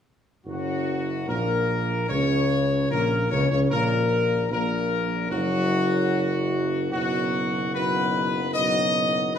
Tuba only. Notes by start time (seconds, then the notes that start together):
0.45 F#1
1.28 A#1
2.10 C#2
2.91 A#1
3.31 C#2
3.51 C#2
3.71 A#1
4.51 A#1
5.31 F#1
6.91 F#1